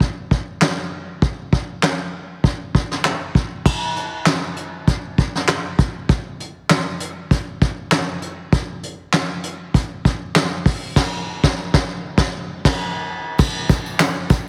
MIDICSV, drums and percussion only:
0, 0, Header, 1, 2, 480
1, 0, Start_track
1, 0, Tempo, 608519
1, 964, Time_signature, 4, 2, 24, 8
1, 11427, End_track
2, 0, Start_track
2, 0, Title_t, "Drums"
2, 3, Note_on_c, 9, 36, 68
2, 82, Note_off_c, 9, 36, 0
2, 246, Note_on_c, 9, 36, 64
2, 325, Note_off_c, 9, 36, 0
2, 485, Note_on_c, 9, 38, 101
2, 487, Note_on_c, 9, 39, 75
2, 564, Note_off_c, 9, 38, 0
2, 566, Note_off_c, 9, 39, 0
2, 963, Note_on_c, 9, 36, 97
2, 1042, Note_off_c, 9, 36, 0
2, 1204, Note_on_c, 9, 36, 79
2, 1282, Note_off_c, 9, 36, 0
2, 1443, Note_on_c, 9, 38, 94
2, 1445, Note_on_c, 9, 39, 79
2, 1522, Note_off_c, 9, 38, 0
2, 1524, Note_off_c, 9, 39, 0
2, 1924, Note_on_c, 9, 36, 68
2, 2003, Note_off_c, 9, 36, 0
2, 2167, Note_on_c, 9, 36, 68
2, 2246, Note_off_c, 9, 36, 0
2, 2298, Note_on_c, 9, 38, 31
2, 2377, Note_off_c, 9, 38, 0
2, 2403, Note_on_c, 9, 38, 89
2, 2405, Note_on_c, 9, 39, 81
2, 2482, Note_off_c, 9, 38, 0
2, 2484, Note_off_c, 9, 39, 0
2, 2643, Note_on_c, 9, 36, 74
2, 2722, Note_off_c, 9, 36, 0
2, 2882, Note_on_c, 9, 49, 73
2, 2884, Note_on_c, 9, 36, 97
2, 2961, Note_off_c, 9, 49, 0
2, 2963, Note_off_c, 9, 36, 0
2, 3125, Note_on_c, 9, 42, 50
2, 3204, Note_off_c, 9, 42, 0
2, 3358, Note_on_c, 9, 42, 81
2, 3361, Note_on_c, 9, 38, 94
2, 3362, Note_on_c, 9, 39, 82
2, 3437, Note_off_c, 9, 42, 0
2, 3439, Note_off_c, 9, 38, 0
2, 3441, Note_off_c, 9, 39, 0
2, 3601, Note_on_c, 9, 42, 72
2, 3679, Note_off_c, 9, 42, 0
2, 3844, Note_on_c, 9, 42, 70
2, 3845, Note_on_c, 9, 36, 70
2, 3923, Note_off_c, 9, 42, 0
2, 3924, Note_off_c, 9, 36, 0
2, 4085, Note_on_c, 9, 42, 50
2, 4088, Note_on_c, 9, 36, 70
2, 4164, Note_off_c, 9, 42, 0
2, 4167, Note_off_c, 9, 36, 0
2, 4222, Note_on_c, 9, 38, 33
2, 4301, Note_off_c, 9, 38, 0
2, 4325, Note_on_c, 9, 38, 96
2, 4325, Note_on_c, 9, 42, 76
2, 4327, Note_on_c, 9, 39, 83
2, 4404, Note_off_c, 9, 38, 0
2, 4404, Note_off_c, 9, 42, 0
2, 4405, Note_off_c, 9, 39, 0
2, 4564, Note_on_c, 9, 42, 72
2, 4565, Note_on_c, 9, 36, 78
2, 4643, Note_off_c, 9, 42, 0
2, 4644, Note_off_c, 9, 36, 0
2, 4805, Note_on_c, 9, 42, 75
2, 4806, Note_on_c, 9, 36, 93
2, 4884, Note_off_c, 9, 42, 0
2, 4885, Note_off_c, 9, 36, 0
2, 5049, Note_on_c, 9, 42, 57
2, 5127, Note_off_c, 9, 42, 0
2, 5283, Note_on_c, 9, 42, 88
2, 5286, Note_on_c, 9, 38, 109
2, 5287, Note_on_c, 9, 39, 85
2, 5362, Note_off_c, 9, 42, 0
2, 5364, Note_off_c, 9, 38, 0
2, 5366, Note_off_c, 9, 39, 0
2, 5522, Note_on_c, 9, 42, 76
2, 5601, Note_off_c, 9, 42, 0
2, 5766, Note_on_c, 9, 36, 79
2, 5767, Note_on_c, 9, 42, 74
2, 5845, Note_off_c, 9, 36, 0
2, 5846, Note_off_c, 9, 42, 0
2, 6005, Note_on_c, 9, 42, 52
2, 6008, Note_on_c, 9, 36, 74
2, 6084, Note_off_c, 9, 42, 0
2, 6087, Note_off_c, 9, 36, 0
2, 6244, Note_on_c, 9, 38, 110
2, 6245, Note_on_c, 9, 42, 85
2, 6246, Note_on_c, 9, 39, 78
2, 6323, Note_off_c, 9, 38, 0
2, 6324, Note_off_c, 9, 42, 0
2, 6325, Note_off_c, 9, 39, 0
2, 6483, Note_on_c, 9, 42, 76
2, 6562, Note_off_c, 9, 42, 0
2, 6724, Note_on_c, 9, 42, 74
2, 6725, Note_on_c, 9, 36, 94
2, 6803, Note_off_c, 9, 42, 0
2, 6804, Note_off_c, 9, 36, 0
2, 6966, Note_on_c, 9, 42, 57
2, 7045, Note_off_c, 9, 42, 0
2, 7201, Note_on_c, 9, 42, 85
2, 7203, Note_on_c, 9, 38, 100
2, 7205, Note_on_c, 9, 39, 81
2, 7280, Note_off_c, 9, 42, 0
2, 7282, Note_off_c, 9, 38, 0
2, 7284, Note_off_c, 9, 39, 0
2, 7443, Note_on_c, 9, 42, 80
2, 7522, Note_off_c, 9, 42, 0
2, 7686, Note_on_c, 9, 36, 70
2, 7686, Note_on_c, 9, 42, 80
2, 7765, Note_off_c, 9, 36, 0
2, 7765, Note_off_c, 9, 42, 0
2, 7928, Note_on_c, 9, 36, 73
2, 7928, Note_on_c, 9, 42, 57
2, 8006, Note_off_c, 9, 42, 0
2, 8007, Note_off_c, 9, 36, 0
2, 8169, Note_on_c, 9, 38, 111
2, 8169, Note_on_c, 9, 42, 86
2, 8171, Note_on_c, 9, 39, 86
2, 8248, Note_off_c, 9, 38, 0
2, 8248, Note_off_c, 9, 42, 0
2, 8249, Note_off_c, 9, 39, 0
2, 8406, Note_on_c, 9, 36, 84
2, 8407, Note_on_c, 9, 46, 74
2, 8485, Note_off_c, 9, 36, 0
2, 8486, Note_off_c, 9, 46, 0
2, 8647, Note_on_c, 9, 36, 89
2, 8648, Note_on_c, 9, 38, 86
2, 8648, Note_on_c, 9, 49, 73
2, 8726, Note_off_c, 9, 36, 0
2, 8727, Note_off_c, 9, 38, 0
2, 8727, Note_off_c, 9, 49, 0
2, 9021, Note_on_c, 9, 36, 93
2, 9022, Note_on_c, 9, 38, 103
2, 9100, Note_off_c, 9, 36, 0
2, 9100, Note_off_c, 9, 38, 0
2, 9260, Note_on_c, 9, 36, 106
2, 9261, Note_on_c, 9, 38, 101
2, 9339, Note_off_c, 9, 36, 0
2, 9340, Note_off_c, 9, 38, 0
2, 9606, Note_on_c, 9, 36, 106
2, 9608, Note_on_c, 9, 38, 94
2, 9684, Note_off_c, 9, 36, 0
2, 9686, Note_off_c, 9, 38, 0
2, 9979, Note_on_c, 9, 36, 100
2, 9980, Note_on_c, 9, 38, 109
2, 9980, Note_on_c, 9, 49, 77
2, 10058, Note_off_c, 9, 36, 0
2, 10059, Note_off_c, 9, 38, 0
2, 10059, Note_off_c, 9, 49, 0
2, 10558, Note_on_c, 9, 54, 48
2, 10562, Note_on_c, 9, 49, 83
2, 10563, Note_on_c, 9, 36, 109
2, 10637, Note_off_c, 9, 54, 0
2, 10641, Note_off_c, 9, 49, 0
2, 10642, Note_off_c, 9, 36, 0
2, 10800, Note_on_c, 9, 54, 45
2, 10802, Note_on_c, 9, 36, 94
2, 10805, Note_on_c, 9, 42, 67
2, 10879, Note_off_c, 9, 54, 0
2, 10881, Note_off_c, 9, 36, 0
2, 10884, Note_off_c, 9, 42, 0
2, 10934, Note_on_c, 9, 54, 33
2, 11013, Note_off_c, 9, 54, 0
2, 11038, Note_on_c, 9, 42, 94
2, 11039, Note_on_c, 9, 54, 87
2, 11041, Note_on_c, 9, 38, 114
2, 11043, Note_on_c, 9, 39, 89
2, 11117, Note_off_c, 9, 42, 0
2, 11118, Note_off_c, 9, 54, 0
2, 11120, Note_off_c, 9, 38, 0
2, 11122, Note_off_c, 9, 39, 0
2, 11277, Note_on_c, 9, 42, 75
2, 11278, Note_on_c, 9, 54, 45
2, 11281, Note_on_c, 9, 36, 91
2, 11355, Note_off_c, 9, 42, 0
2, 11357, Note_off_c, 9, 54, 0
2, 11360, Note_off_c, 9, 36, 0
2, 11427, End_track
0, 0, End_of_file